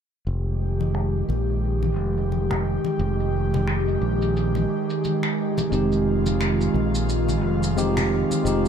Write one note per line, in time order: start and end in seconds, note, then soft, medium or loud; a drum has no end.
0.26 1.23 F1 medium
0.26 8.68 D#3 medium
0.26 8.68 G#3 medium
0.26 5.68 G4 medium
0.26 shaker soft
0.47 shaker soft
0.81 high conga medium
0.81 shaker medium
0.95 finger snap medium
1.15 shaker soft
1.29 1.97 A#1 medium
1.29 high conga soft
1.49 shaker medium
1.64 shaker soft
1.83 high conga medium
1.83 shaker soft
1.97 2.77 F1 medium
2.17 shaker medium
2.32 high conga medium
2.32 shaker soft
2.51 finger snap medium
2.51 low conga medium
2.85 high conga medium
2.85 shaker medium
2.99 3.96 F1 medium
2.99 shaker medium
3.20 shaker soft
3.54 high conga medium
3.54 low conga medium
3.54 shaker medium
3.68 finger snap medium
3.68 shaker soft
3.88 shaker soft
4.01 4.64 A#1 medium
4.22 shaker medium
4.37 shaker soft
4.55 high conga medium
4.55 shaker soft
4.90 shaker medium
5.04 high conga medium
5.04 shaker medium
5.23 finger snap medium
5.23 shaker soft
5.58 high conga medium
5.58 low conga medium
5.58 shaker medium
5.70 6.69 F1 medium
5.70 7.72 G#3 medium
5.70 7.73 C4 medium
5.70 7.74 D#4 medium
5.70 8.68 F4 medium
5.70 shaker soft
5.75 7.75 G4 medium
5.92 shaker soft
6.26 high conga medium
6.26 shaker medium
6.41 finger snap medium
6.41 shaker soft
6.61 shaker soft
6.74 7.42 A#1 medium
6.74 high conga medium
6.95 shaker medium
7.09 shaker medium
7.29 high conga medium
7.29 shaker soft
7.42 8.23 F1 medium
7.63 shaker medium
7.76 8.41 G#3 medium
7.76 8.42 C4 medium
7.76 8.42 D#4 medium
7.76 8.42 G4 loud
7.76 high conga medium
7.76 shaker medium
7.97 finger snap medium
7.97 low conga medium
7.97 shaker soft
8.31 high conga medium
8.31 shaker medium
8.43 8.68 F1 medium
8.43 8.68 G#3 medium
8.43 8.68 C4 medium
8.43 8.68 D#4 medium
8.43 shaker medium
8.48 8.68 G4 medium